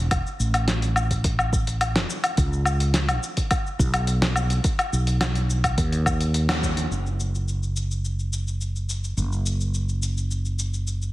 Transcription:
0.00 0.20 E1 loud
0.11 kick loud
0.11 closed hi-hat medium
0.11 low woodblock medium
0.11 shaker soft
0.27 shaker soft
0.40 2.04 A1 medium
0.40 shaker medium
0.54 closed hi-hat soft
0.54 low woodblock medium
0.54 shaker soft
0.68 snare medium
0.68 closed hi-hat soft
0.68 shaker soft
0.82 closed hi-hat soft
0.82 shaker soft
0.96 low woodblock medium
0.96 shaker medium
1.11 kick medium
1.11 closed hi-hat soft
1.11 shaker soft
1.24 kick loud
1.24 closed hi-hat medium
1.24 shaker soft
1.39 low woodblock medium
1.39 shaker soft
1.53 kick loud
1.53 shaker medium
1.67 closed hi-hat soft
1.67 shaker soft
1.81 closed hi-hat medium
1.81 low woodblock medium
1.81 shaker soft
1.96 snare medium
1.96 closed hi-hat soft
1.96 shaker soft
2.10 shaker medium
2.24 closed hi-hat soft
2.24 low woodblock medium
2.24 shaker soft
2.37 3.17 C#2 loud
2.37 kick loud
2.37 closed hi-hat medium
2.37 shaker soft
2.53 shaker soft
2.65 low woodblock medium
2.65 shaker medium
2.80 closed hi-hat soft
2.80 shaker soft
2.94 snare medium
2.94 closed hi-hat medium
2.94 shaker soft
3.09 closed hi-hat soft
3.09 low woodblock medium
3.09 shaker soft
3.23 shaker medium
3.37 kick medium
3.37 closed hi-hat soft
3.37 shaker soft
3.51 kick loud
3.51 closed hi-hat medium
3.51 low woodblock medium
3.51 shaker soft
3.67 shaker soft
3.79 4.59 B1 loud
3.79 kick loud
3.79 shaker medium
3.94 closed hi-hat soft
3.94 low woodblock medium
3.94 shaker soft
4.07 closed hi-hat medium
4.07 shaker soft
4.22 snare medium
4.22 closed hi-hat soft
4.22 shaker soft
4.36 low woodblock medium
4.36 shaker medium
4.50 closed hi-hat soft
4.50 shaker soft
4.64 kick loud
4.64 closed hi-hat medium
4.64 shaker soft
4.79 closed hi-hat soft
4.79 low woodblock medium
4.79 shaker soft
4.93 5.77 B1 medium
4.93 shaker medium
5.07 closed hi-hat soft
5.07 shaker soft
5.21 snare medium
5.21 closed hi-hat medium
5.21 low woodblock medium
5.21 shaker soft
5.35 closed hi-hat soft
5.35 shaker soft
5.50 shaker medium
5.64 kick medium
5.64 closed hi-hat soft
5.64 low woodblock medium
5.64 shaker soft
5.78 6.85 D#2 medium
5.78 kick loud
5.78 closed hi-hat medium
5.78 shaker soft
5.92 closed hi-hat soft
5.92 shaker soft
6.06 kick loud
6.06 low woodblock medium
6.06 shaker medium
6.21 closed hi-hat soft
6.21 shaker soft
6.34 closed hi-hat medium
6.34 shaker soft
6.49 snare medium
6.49 closed hi-hat soft
6.49 low woodblock medium
6.49 shaker soft
6.63 kick medium
6.63 shaker medium
6.77 closed hi-hat soft
6.77 shaker soft
6.91 9.15 F#1 medium
6.91 shaker soft
7.07 shaker soft
7.20 shaker medium
7.35 shaker soft
7.48 shaker soft
7.63 shaker soft
7.76 shaker medium
7.91 shaker soft
8.05 shaker soft
8.19 shaker soft
8.33 shaker medium
8.48 shaker soft
8.61 shaker soft
8.76 shaker soft
8.89 shaker medium
9.04 shaker soft
9.17 11.13 F#1 medium
9.17 shaker soft
9.32 shaker soft
9.46 shaker medium
9.61 shaker soft
9.74 shaker soft
9.89 shaker soft
10.03 shaker medium
10.17 shaker soft
10.31 shaker soft
10.45 shaker soft
10.59 shaker medium
10.74 shaker soft
10.87 shaker soft
11.02 shaker soft

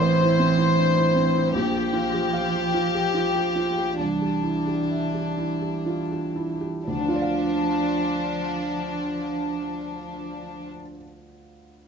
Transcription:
0.00 1.51 A1 medium
0.00 1.53 E3 loud
0.00 0.39 C4 medium
0.00 0.21 E4 medium
0.00 1.50 C5 medium
0.00 0.32 C5 medium
0.21 0.51 E4 medium
0.39 0.70 C4 medium
0.58 0.89 E4 medium
0.77 0.96 D4 medium
0.96 1.27 E4 medium
1.15 1.46 C4 medium
1.34 1.54 E4 medium
1.54 3.97 A#1 medium
1.54 3.96 F3 medium
1.54 3.97 G4 medium
1.74 2.05 G4 medium
1.93 2.25 F4 medium
2.13 2.45 G4 medium
2.33 2.65 F5 medium
2.54 2.86 G4 medium
2.74 3.07 F4 medium
2.94 3.27 G4 medium
3.14 3.36 F4 soft
3.35 3.70 G4 medium
3.56 3.91 F4 soft
3.77 4.00 G4 soft
3.99 6.82 C2 medium
3.99 6.56 E3 medium
3.99 6.61 D4 medium
4.22 4.58 G4 soft
4.43 4.81 E4 soft
4.67 5.04 G4 soft
4.91 5.29 E5 soft
5.14 5.52 G4 soft
5.38 5.76 E4 soft
5.61 6.01 G4 soft
5.86 6.11 F4 soft
6.11 6.52 G4 soft
6.36 6.77 E4 soft
6.61 6.87 G4 soft
6.86 10.69 D2 medium
6.86 10.69 F3 medium
6.86 10.68 D4 medium
6.94 10.75 D3 medium
7.01 10.82 D4 medium
7.08 10.90 F4 medium
7.15 10.97 D5 medium
7.22 11.03 F5 medium

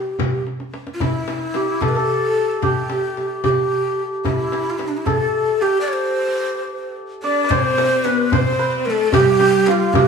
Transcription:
0.00 0.43 G4 medium
0.19 tombak dum medium
0.19 frame drum medium
0.47 tombak tek soft
0.60 tombak ka medium
0.74 tombak tek medium
0.87 tombak ka medium
0.94 1.03 F4 soft
1.00 4.24 E4 medium
1.00 1.83 E4 medium
1.00 tombak dum medium
1.00 frame drum medium
1.28 tombak tek medium
1.28 frame drum medium
1.54 2.62 G4 medium
1.54 tombak tek medium
1.54 frame drum medium
1.81 1.90 A4 medium
1.81 1.96 A4 medium
1.81 tombak dum medium
1.81 frame drum medium
1.89 1.97 B4 medium
1.95 4.89 A4 medium
1.95 2.01 A#4 medium
2.00 2.64 A4 medium
2.09 tombak ka soft
2.62 3.44 G4 medium
2.62 3.43 G4 medium
2.62 frame drum medium
2.62 tombak dum medium
2.90 tombak tek medium
2.90 frame drum medium
3.17 frame drum soft
3.44 5.61 G4 medium
3.44 3.50 G#4 medium
3.44 frame drum medium
3.44 tombak dum medium
3.49 4.01 G4 medium
3.71 tombak ka soft
4.25 7.73 E4 medium
4.25 4.71 E4 medium
4.25 tombak dum medium
4.25 frame drum medium
4.52 tombak tek medium
4.52 frame drum medium
4.70 4.80 F4 medium
4.78 4.90 E4 medium
4.78 tombak tek medium
4.78 frame drum soft
4.88 4.99 D4 medium
4.97 5.08 E4 medium
5.06 7.99 A4 medium
5.06 5.64 A4 medium
5.06 tombak dum medium
5.06 frame drum medium
5.33 tombak ka soft
5.61 8.75 G4 medium
5.61 5.80 G4 medium
5.81 5.90 D5 medium
5.88 5.94 C#5 medium
5.93 6.96 C5 medium
7.23 7.52 D4 medium
7.23 7.51 D5 medium
7.23 9.70 D5 medium
7.44 7.57 B4 medium
7.50 8.06 C4 medium
7.50 8.06 C5 medium
7.50 8.32 C5 medium
7.50 tombak dum medium
7.50 frame drum medium
7.78 tombak tek medium
7.78 frame drum medium
8.05 8.33 B3 medium
8.05 8.32 B4 medium
8.05 tombak tek medium
8.05 frame drum medium
8.30 8.88 C4 medium
8.30 8.87 C5 medium
8.30 8.52 C5 medium
8.30 tombak dum medium
8.30 frame drum medium
8.52 8.65 C5 medium
8.59 10.08 B4 medium
8.59 tombak ka soft
8.85 9.16 A3 medium
8.85 8.91 A#4 medium
8.85 tombak ka soft
8.90 9.11 A4 medium
9.12 9.94 G3 medium
9.12 9.66 G4 medium
9.12 9.41 G4 medium
9.12 tombak dum loud
9.12 frame drum loud
9.40 9.94 G4 medium
9.40 tombak tek medium
9.40 frame drum medium
9.66 10.08 F4 medium
9.66 9.72 G4 medium
9.66 tombak tek medium
9.66 frame drum medium
9.71 9.95 F4 medium
9.93 10.08 G3 medium
9.93 10.08 G4 medium
9.93 10.02 G4 medium
9.93 tombak dum medium
9.93 frame drum loud
10.02 10.08 G4 medium

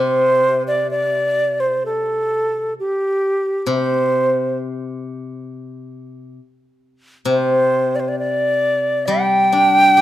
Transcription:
0.00 2.77 C3 soft
0.00 0.63 C5 medium
0.68 0.89 D5 medium
0.91 1.62 D5 medium
1.60 1.84 C5 medium
1.86 2.74 A4 medium
2.80 3.67 G4 medium
3.66 6.37 C3 medium
3.74 4.58 C5 medium
7.25 9.96 C3 medium
7.30 7.97 C5 medium
7.96 8.01 D5 medium
8.00 8.10 C5 medium
8.08 8.18 D5 medium
8.19 9.08 D5 medium
9.06 10.01 G3 medium
9.06 10.01 G5 loud
9.53 10.01 D4 soft
9.97 10.01 G4 soft

